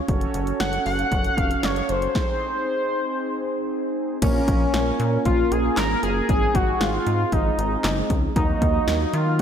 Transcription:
0.08 F#1 C#4 F#4 A4 C#5, kick, closed hi-hat
0.21 closed hi-hat
0.34 F#1, closed hi-hat
0.47 closed hi-hat
0.60 F#1 F#5, snare, closed hi-hat
0.73 closed hi-hat
0.86 F#1 F#5, open hi-hat
0.99 closed hi-hat
1.12 F#1, kick, closed hi-hat
1.24 closed hi-hat
1.37 F1 F5, kick, closed hi-hat
1.51 closed hi-hat
1.63 F#1 C#5, snare, closed hi-hat
1.76 closed hi-hat
1.89 F#1 C5, closed hi-hat
2.02 closed hi-hat
2.15 C4 D#4 G#4 C5, kick, snare
4.22 A#1 A#3 C#4 F4 A#4, kick, closed hi-hat, crash
4.48 A#1, kick, closed hi-hat
4.74 A#1, snare, closed hi-hat
5.00 A#2, closed hi-hat
5.25 A#1 F4, kick, closed hi-hat
5.51 A#1 G#4, closed hi-hat
5.77 G#1 A#4, snare, clap, closed hi-hat
6.03 F#1 G#4, closed hi-hat
6.29 G#1 G#3 C4 D#4 G#4, kick, closed hi-hat
6.55 G#1 F#4, kick, closed hi-hat
6.81 G#1 F4, snare, closed hi-hat
7.07 G#2, closed hi-hat
7.32 G#1 D#4, kick, closed hi-hat
7.58 G#1, closed hi-hat
7.84 F#1, snare, clap, closed hi-hat
8.10 C#2, kick, closed hi-hat
8.36 D#2 F#3 A#3 D#4 F#4, kick, closed hi-hat
8.62 D#2, kick, closed hi-hat
8.87 D#2, snare, closed hi-hat
9.13 D#3 F4, closed hi-hat

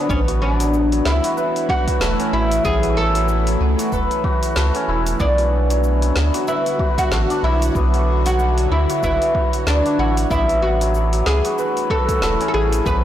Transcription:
Already playing: F#3 A3 D4 E4 F#4 B4
0.09 A1 E3 A3 B3 C#4 E4, kick, cabasa
0.28 F#4, open hi-hat, cabasa
0.42 C#4
0.53 D4
0.60 F#3, open hi-hat, cabasa
0.74 cabasa
0.92 F#3, open hi-hat, cabasa
1.05 C#2 E4, snare
1.24 F#4, open hi-hat, cabasa
1.37 B4, cabasa
1.56 open hi-hat, cabasa
1.69 F#4, kick
1.88 kick, open hi-hat, cabasa
2.01 E1 A3, snare, cabasa
2.20 C#4, open hi-hat, cabasa
2.33 A1 E4
2.51 open hi-hat, cabasa
2.65 A1 B3 G#4, kick, cabasa
2.83 F#4, open hi-hat, cabasa
2.97 A4
3.15 F#3, open hi-hat, cabasa
3.28 cabasa
3.47 F#3, open hi-hat, cabasa
3.61 C#2
3.79 F#4, open hi-hat, cabasa
3.92 E1 B4, kick, cabasa
4.11 open hi-hat, cabasa
4.24 F#4, kick
4.43 open hi-hat, cabasa
4.56 C#2 A3, snare, cabasa
4.75 C#4, open hi-hat, cabasa
4.88 E1 E4
5.07 open hi-hat, cabasa
5.20 B1 D3 B3 D4 F#4, kick, cabasa
5.38 F#4, open hi-hat, cabasa
5.70 F#3, open hi-hat, cabasa
5.84 cabasa
6.02 F#3, open hi-hat, cabasa
6.16 D2, snare
6.34 F#4, open hi-hat, cabasa
6.48 E4 B4, cabasa
6.66 open hi-hat, cabasa
6.79 F#4, kick
6.98 F#4, kick, open hi-hat, cabasa
7.12 A1 A3, snare, cabasa
7.30 D4, open hi-hat, cabasa
7.43 B1 E4
7.62 open hi-hat, cabasa
7.75 B1 B3 C#5, kick, cabasa
7.94 F#4, open hi-hat, cabasa
8.26 F#3 F#4, open hi-hat, cabasa
8.39 cabasa
8.58 F#3, open hi-hat, cabasa
8.71 D2 E4
8.90 F#4, open hi-hat, cabasa
9.03 F#1 E4 B4, kick, cabasa
9.22 open hi-hat, cabasa
9.35 F#4, kick
9.53 open hi-hat, cabasa
9.67 D2 A3 D4, snare, cabasa
9.86 D4, open hi-hat, cabasa
9.99 A1 E4 F#4
10.17 open hi-hat, cabasa
10.30 A1 E3 A3 B3 E4, kick, cabasa
10.49 F#4, open hi-hat, cabasa
10.62 F#4
10.81 F#3, open hi-hat, cabasa
10.94 cabasa
11.13 F#3, open hi-hat, cabasa
11.26 C#2 G#4, snare
11.45 F#4, open hi-hat, cabasa
11.58 B4, cabasa
11.77 open hi-hat, cabasa
11.90 F#4 A4, kick
12.09 kick, open hi-hat, cabasa
12.22 E1 A3, snare, cabasa
12.41 C#4, open hi-hat, cabasa
12.48 A4
12.54 A1 E4 G#4
12.73 open hi-hat, cabasa
12.86 A1 B3 F#4 B4, kick, cabasa

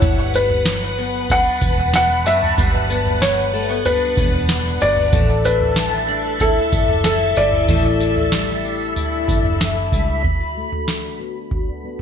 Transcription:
Already playing: G3 D4 C#5 F#5
0.01 G1 B4, kick, floor tom, crash, tambourine
0.32 B3 B4 A5, tambourine
0.50 floor tom
0.66 F#3, snare, tambourine
0.98 B3
1.30 D4 F#5, kick, floor tom, tambourine
1.61 E1 B3, kick, tambourine
1.78 floor tom
1.93 D4 F#5, snare, tambourine
2.25 F#1 F#3 E5, tambourine
2.43 floor tom
2.58 G1 G2, kick, floor tom, tambourine
2.89 B3, tambourine
3.06 floor tom
3.21 F#3 C#5, snare, tambourine
3.53 A3
3.69 B3
3.85 D4 B4, floor tom, tambourine
4.17 E1 B3 A5, kick, tambourine
4.33 floor tom
4.49 D4, snare, tambourine
4.81 G1 F#3 D5, tambourine
4.97 floor tom
5.13 A1 A2 A4 E5, kick, floor tom, tambourine
5.44 D4 B4, tambourine
5.60 floor tom
5.76 G3, snare, tambourine
6.08 D4
6.40 E4 A4, kick, floor tom, tambourine
6.72 F#1 D4, kick, tambourine
6.89 floor tom
7.04 E4 A4, snare, tambourine
7.36 G1 G3 D5, tambourine
7.53 floor tom
7.68 A1 A2, kick, floor tom, tambourine
8.00 D4, tambourine
8.16 floor tom
8.32 G3 B5, snare, tambourine
8.65 D4
8.96 E4, floor tom, tambourine
9.28 F#1 D4, kick, tambourine
9.45 floor tom
9.60 E4, snare, tambourine
9.92 C#2 G3, kick, tambourine
10.23 D3 F#4 D5 A5 B5, kick, floor tom
10.56 A3
10.72 floor tom
10.87 F#4, snare
11.19 B3
11.51 A3, kick, floor tom
11.83 B3

